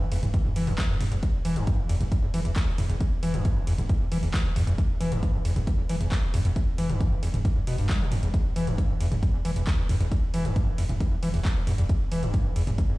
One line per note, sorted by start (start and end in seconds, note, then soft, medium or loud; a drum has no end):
0.01 0.04 E2 medium
0.12 0.22 E1 loud
0.12 0.18 E2 loud
0.12 open hi-hat loud
0.12 ride medium
0.23 0.34 E1 medium
0.23 0.26 E2 medium
0.23 closed hi-hat medium
0.23 mid tom medium
0.34 0.38 G2 medium
0.34 kick loud
0.34 closed hi-hat medium
0.34 ride medium
0.45 0.49 E2 medium
0.45 mid tom medium
0.56 0.67 E1 loud
0.56 0.69 E3 medium
0.56 open hi-hat loud
0.56 ride medium
0.67 0.78 E1 medium
0.67 0.73 E2 medium
0.67 open hi-hat medium
0.78 0.88 E2 medium
0.78 kick loud
0.78 clap loud
0.78 closed hi-hat medium
0.78 ride medium
0.89 1.00 E1 medium
0.89 0.96 F#2 loud
1.01 1.11 E1 loud
1.01 1.04 E2 medium
1.01 mid tom medium
1.01 open hi-hat loud
1.01 ride medium
1.12 1.23 E1 medium
1.12 1.15 E2 medium
1.12 closed hi-hat medium
1.23 1.26 E2 medium
1.23 kick loud
1.23 closed hi-hat medium
1.23 ride medium
1.45 1.56 E1 medium
1.45 1.58 E3 loud
1.45 open hi-hat loud
1.45 ride medium
1.56 1.67 E1 medium
1.56 1.80 G2 medium
1.56 closed hi-hat medium
1.67 kick loud
1.67 closed hi-hat medium
1.67 ride medium
1.78 1.82 E2 medium
1.89 2.00 E1 loud
1.89 1.96 E2 loud
1.89 open hi-hat loud
1.89 ride medium
2.00 2.11 E1 medium
2.00 2.04 E2 medium
2.00 closed hi-hat medium
2.00 mid tom medium
2.12 2.15 G2 medium
2.12 kick loud
2.12 closed hi-hat medium
2.12 ride medium
2.23 2.26 E2 medium
2.34 2.44 E1 medium
2.34 2.40 E3 loud
2.34 open hi-hat loud
2.34 ride medium
2.45 2.56 E1 medium
2.45 2.51 E2 medium
2.45 closed hi-hat medium
2.56 2.69 D2 medium
2.56 kick loud
2.56 clap loud
2.56 closed hi-hat medium
2.56 ride medium
2.67 2.78 E1 medium
2.67 2.71 E2 medium
2.78 2.89 E1 loud
2.78 2.84 E2 loud
2.78 mid tom medium
2.78 open hi-hat loud
2.78 ride medium
2.89 3.00 E1 medium
2.89 2.96 E2 loud
2.89 closed hi-hat medium
3.00 3.04 E2 medium
3.00 kick loud
3.00 closed hi-hat medium
3.00 ride medium
3.23 3.33 E1 loud
3.23 3.35 E3 loud
3.23 open hi-hat loud
3.23 ride medium
3.34 3.45 E1 medium
3.34 3.58 G2 medium
3.34 closed hi-hat medium
3.45 kick loud
3.45 closed hi-hat medium
3.45 ride medium
3.56 3.60 E2 medium
3.67 3.78 E1 loud
3.67 3.73 E2 loud
3.67 open hi-hat loud
3.67 ride medium
3.78 3.89 E1 medium
3.78 3.82 E2 medium
3.78 closed hi-hat medium
3.78 mid tom medium
3.89 3.93 G2 medium
3.89 kick loud
3.89 closed hi-hat medium
3.89 ride medium
4.01 4.04 E2 medium
4.12 4.22 E1 loud
4.12 4.18 E3 loud
4.12 open hi-hat loud
4.12 ride medium
4.23 4.34 E1 medium
4.23 4.29 E2 medium
4.23 open hi-hat medium
4.34 4.46 D2 medium
4.34 kick loud
4.34 clap loud
4.34 closed hi-hat medium
4.34 ride medium
4.45 4.55 E1 medium
4.45 4.49 E2 medium
4.56 4.67 E1 loud
4.56 4.62 E2 loud
4.56 mid tom medium
4.56 open hi-hat loud
4.56 ride medium
4.67 4.78 E1 medium
4.67 4.73 E2 loud
4.67 closed hi-hat medium
4.78 4.82 E2 medium
4.78 kick loud
4.78 closed hi-hat medium
4.78 ride medium
5.00 5.11 E1 loud
5.00 5.13 E3 loud
5.00 open hi-hat loud
5.00 ride medium
5.12 5.22 E1 medium
5.12 5.35 G2 medium
5.12 closed hi-hat medium
5.23 kick loud
5.23 closed hi-hat medium
5.23 ride medium
5.34 5.38 E2 medium
5.45 5.56 E1 loud
5.45 5.51 E2 loud
5.45 open hi-hat loud
5.45 ride medium
5.56 5.67 E1 medium
5.56 5.60 E2 medium
5.56 closed hi-hat medium
5.56 mid tom medium
5.67 5.71 G2 medium
5.67 kick loud
5.67 closed hi-hat medium
5.67 ride medium
5.78 5.82 E2 medium
5.89 6.00 E1 loud
5.89 5.96 E3 loud
5.89 open hi-hat loud
5.89 ride medium
6.01 6.11 E1 medium
6.01 6.07 E2 medium
6.01 closed hi-hat medium
6.12 6.24 D2 medium
6.12 kick loud
6.12 clap loud
6.12 closed hi-hat medium
6.12 ride medium
6.23 6.33 E1 medium
6.23 6.26 E2 medium
6.34 6.44 E1 loud
6.34 6.40 E2 loud
6.34 mid tom medium
6.34 open hi-hat loud
6.34 ride medium
6.45 6.56 E1 medium
6.45 6.51 E2 loud
6.45 closed hi-hat medium
6.56 6.60 E2 medium
6.56 kick loud
6.56 closed hi-hat medium
6.56 ride medium
6.78 6.89 E1 loud
6.78 6.91 E3 loud
6.78 open hi-hat loud
6.78 ride medium
6.89 7.00 E1 medium
6.89 7.13 G2 medium
6.89 closed hi-hat medium
7.00 kick loud
7.00 closed hi-hat medium
7.00 ride medium
7.12 7.15 E2 medium
7.23 7.33 E1 loud
7.23 7.29 E2 loud
7.23 open hi-hat loud
7.23 ride medium
7.34 7.45 E1 medium
7.34 7.38 E2 medium
7.34 closed hi-hat medium
7.34 mid tom medium
7.45 7.49 G2 medium
7.45 kick loud
7.45 closed hi-hat medium
7.45 ride medium
7.56 7.60 E2 medium
7.67 7.78 E1 loud
7.67 7.76 B2 loud
7.67 open hi-hat loud
7.67 ride medium
7.78 7.89 E1 medium
7.78 7.88 G2 medium
7.78 open hi-hat medium
7.89 8.02 G3 medium
7.89 kick loud
7.89 clap loud
7.89 closed hi-hat medium
7.89 ride medium
8.01 8.11 E1 medium
8.01 8.13 B2 medium
8.12 8.22 E1 loud
8.12 8.18 E2 medium
8.12 mid tom medium
8.12 open hi-hat loud
8.12 ride medium
8.23 8.34 E1 medium
8.23 8.29 E2 medium
8.23 closed hi-hat medium
8.34 8.38 E2 medium
8.34 kick loud
8.34 closed hi-hat medium
8.34 ride medium
8.56 8.67 E1 loud
8.56 8.69 E3 loud
8.56 open hi-hat loud
8.56 ride medium
8.67 8.78 E1 medium
8.67 8.91 G2 medium
8.67 closed hi-hat medium
8.78 kick loud
8.78 closed hi-hat medium
8.78 ride medium
8.89 8.93 E2 medium
9.00 9.11 E1 loud
9.00 9.07 E2 loud
9.00 open hi-hat loud
9.00 ride medium
9.12 9.22 E1 medium
9.12 9.15 E2 medium
9.12 closed hi-hat medium
9.12 mid tom medium
9.23 9.26 G2 medium
9.23 kick loud
9.23 closed hi-hat medium
9.23 ride medium
9.34 9.38 E2 medium
9.45 9.55 E1 loud
9.45 9.51 E3 loud
9.45 open hi-hat loud
9.45 ride medium
9.56 9.67 E1 medium
9.56 9.62 E2 medium
9.56 closed hi-hat medium
9.67 9.80 D2 medium
9.67 kick loud
9.67 clap loud
9.67 closed hi-hat medium
9.67 ride medium
9.78 9.89 E1 medium
9.78 9.82 E2 medium
9.89 10.00 E1 loud
9.89 9.96 E2 loud
9.89 mid tom medium
9.89 open hi-hat loud
9.89 ride medium
10.00 10.11 E1 medium
10.00 10.07 E2 loud
10.00 closed hi-hat medium
10.12 10.15 E2 medium
10.12 kick loud
10.12 closed hi-hat medium
10.12 ride medium
10.34 10.44 E1 loud
10.34 10.46 E3 loud
10.34 open hi-hat loud
10.34 ride medium
10.45 10.56 E1 medium
10.45 10.69 G2 medium
10.45 closed hi-hat medium
10.56 kick loud
10.56 closed hi-hat medium
10.56 ride medium
10.67 10.71 E2 medium
10.78 10.89 E1 loud
10.78 10.84 E2 loud
10.78 open hi-hat loud
10.78 ride medium
10.89 11.00 E1 medium
10.89 10.93 E2 medium
10.89 closed hi-hat medium
10.89 mid tom medium
11.00 11.04 G2 medium
11.00 kick loud
11.00 closed hi-hat medium
11.00 ride medium
11.12 11.15 E2 medium
11.23 11.33 E1 loud
11.23 11.29 E3 loud
11.23 open hi-hat loud
11.23 ride medium
11.34 11.45 E1 medium
11.34 11.40 E2 medium
11.34 open hi-hat medium
11.45 11.58 D2 medium
11.45 kick loud
11.45 clap loud
11.45 closed hi-hat medium
11.45 ride medium
11.56 11.67 E1 medium
11.56 11.60 E2 medium
11.67 11.78 E1 loud
11.67 11.73 E2 loud
11.67 mid tom medium
11.67 open hi-hat loud
11.67 ride medium
11.78 11.89 E1 medium
11.78 11.84 E2 loud
11.78 closed hi-hat medium
11.89 11.93 E2 medium
11.89 kick loud
11.89 closed hi-hat medium
11.89 ride medium
12.12 12.22 E1 loud
12.12 12.24 E3 loud
12.12 open hi-hat loud
12.12 ride medium
12.23 12.34 E1 medium
12.23 12.47 G2 medium
12.23 closed hi-hat medium
12.34 kick loud
12.34 closed hi-hat medium
12.34 ride medium
12.45 12.49 E2 medium
12.56 12.67 E1 loud
12.56 12.62 E2 loud
12.56 open hi-hat loud
12.56 ride medium
12.67 12.78 E1 medium
12.67 12.71 E2 medium
12.67 closed hi-hat medium
12.67 mid tom medium
12.78 12.82 G2 medium
12.78 kick loud
12.78 closed hi-hat medium
12.78 ride medium
12.90 12.93 E2 medium